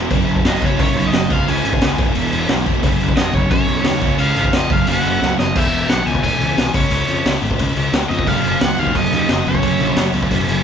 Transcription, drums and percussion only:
0.11 kick, crash
0.28 crash
0.36 kick
0.45 snare, crash
0.62 kick, crash
0.79 kick, crash
0.97 crash
1.13 snare, crash
1.30 kick, crash
1.48 crash
1.65 crash
1.73 kick
1.81 snare, crash
1.98 kick, crash
2.15 crash
2.32 crash
2.49 snare, crash
2.66 kick, crash
2.83 kick, crash
3.00 crash
3.09 kick
3.17 snare, crash
3.33 kick, crash
3.51 kick, crash
3.68 crash
3.84 snare, crash
4.01 kick, crash
4.18 crash
4.36 crash
4.45 kick
4.53 snare, crash
4.70 kick, crash
4.87 crash
5.05 crash
5.22 snare
5.39 snare
5.56 kick, crash
5.73 crash
5.89 snare, crash
6.07 crash
6.15 kick
6.24 kick, crash
6.41 crash
6.58 snare, crash
6.74 kick, crash
6.91 crash
7.08 crash
7.26 snare, crash
7.42 crash
7.51 kick
7.59 kick, crash
7.76 crash
7.93 snare, crash
8.11 crash
8.19 kick
8.27 kick, crash
8.44 crash
8.61 snare, crash
8.78 crash
8.87 kick
8.95 kick, crash
9.12 crash
9.29 snare, crash
9.46 crash
9.55 kick
9.63 kick, crash
9.80 crash
9.96 snare, crash
10.14 crash
10.23 kick
10.31 kick, crash
10.49 crash

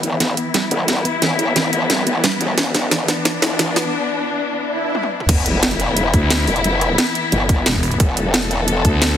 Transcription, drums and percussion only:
0.03 closed hi-hat
0.20 snare, closed hi-hat
0.37 closed hi-hat
0.54 snare, closed hi-hat
0.71 closed hi-hat
0.88 snare, closed hi-hat
1.05 closed hi-hat
1.22 snare, closed hi-hat
1.39 closed hi-hat
1.56 snare, closed hi-hat
1.73 closed hi-hat
1.90 snare, closed hi-hat
2.07 closed hi-hat
2.24 snare, closed hi-hat
2.41 closed hi-hat
2.58 snare, closed hi-hat
2.74 snare, closed hi-hat
2.91 snare, closed hi-hat
3.08 snare, closed hi-hat
3.25 snare, closed hi-hat
3.42 snare, closed hi-hat
3.59 snare, closed hi-hat
3.76 snare, open hi-hat
4.95 high tom
5.03 high tom
5.20 mid tom
5.29 kick, closed hi-hat, crash
5.46 closed hi-hat
5.63 snare, closed hi-hat
5.71 closed hi-hat
5.80 closed hi-hat
5.97 closed hi-hat
6.14 kick, closed hi-hat
6.30 snare, closed hi-hat
6.47 cross-stick, open hi-hat
6.56 closed hi-hat
6.64 closed hi-hat
6.81 cross-stick, closed hi-hat
6.98 snare, closed hi-hat
7.07 closed hi-hat
7.15 closed hi-hat
7.32 closed hi-hat
7.49 kick, closed hi-hat
7.66 snare, closed hi-hat
7.75 kick
7.83 cross-stick, open hi-hat
7.91 closed hi-hat
8.00 kick, closed hi-hat
8.17 closed hi-hat
8.34 snare, closed hi-hat
8.42 closed hi-hat
8.51 closed hi-hat
8.68 closed hi-hat
8.85 kick, closed hi-hat
9.02 snare, closed hi-hat

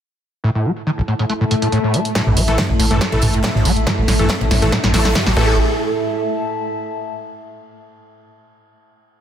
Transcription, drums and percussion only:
0.65 closed hi-hat
0.77 closed hi-hat
0.87 closed hi-hat
1.08 closed hi-hat
1.19 closed hi-hat
1.30 closed hi-hat
1.51 closed hi-hat
1.62 closed hi-hat
1.72 closed hi-hat
1.94 closed hi-hat
2.05 closed hi-hat
2.15 kick, snare, closed hi-hat, ride
2.27 mid tom
2.37 open hi-hat, ride
2.48 closed hi-hat, ride
2.58 kick, snare, closed hi-hat, mid tom, ride
2.80 open hi-hat, ride
2.91 closed hi-hat, mid tom
3.01 kick, snare, closed hi-hat, ride
3.12 ride
3.22 snare, mid tom, open hi-hat, ride
3.34 closed hi-hat, ride
3.43 kick, snare, closed hi-hat, ride
3.55 snare, mid tom
3.65 open hi-hat, ride
3.77 closed hi-hat
3.87 kick, snare, closed hi-hat, mid tom, ride
4.08 snare, open hi-hat, ride
4.19 closed hi-hat, mid tom
4.29 kick, snare, closed hi-hat, ride
4.41 ride
4.51 snare, mid tom, open hi-hat, ride
4.61 snare, closed hi-hat
4.72 kick, snare, closed hi-hat, ride
4.84 snare, mid tom
4.93 snare, open hi-hat
5.05 snare, closed hi-hat
5.15 kick, snare, closed hi-hat, mid tom, ride
5.26 snare
5.37 kick, crash

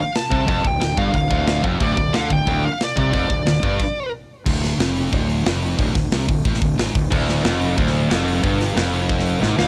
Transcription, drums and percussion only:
0.15 snare, open hi-hat
0.32 kick
0.48 kick, open hi-hat
0.65 kick
0.81 snare, open hi-hat
0.98 kick
1.14 kick, open hi-hat
1.31 kick
1.47 snare, open hi-hat
1.64 kick
1.80 kick, open hi-hat
1.97 kick
2.13 snare, open hi-hat
2.30 kick
2.47 kick, open hi-hat
2.80 snare, open hi-hat
2.97 kick
3.13 kick, open hi-hat
3.30 kick
3.46 snare, open hi-hat
3.63 kick
3.80 kick, crash
4.46 kick, crash
4.63 snare, open hi-hat
4.80 snare, open hi-hat
4.96 open hi-hat
5.13 kick, open hi-hat
5.30 open hi-hat
5.46 snare, open hi-hat
5.62 open hi-hat
5.79 kick, open hi-hat
5.95 kick, snare, open hi-hat
6.12 snare, open hi-hat
6.29 kick, open hi-hat
6.45 kick, open hi-hat
6.54 snare
6.62 kick
6.79 snare, open hi-hat
6.95 kick, open hi-hat
7.12 kick, crash
7.29 snare, open hi-hat
7.44 snare, open hi-hat
7.61 open hi-hat
7.78 kick
7.87 snare
7.95 open hi-hat
8.11 snare, open hi-hat
8.28 open hi-hat
8.44 kick, open hi-hat
8.60 snare, open hi-hat
8.77 snare, open hi-hat
8.93 open hi-hat
9.09 kick, open hi-hat
9.19 snare
9.26 open hi-hat
9.43 snare
9.59 snare

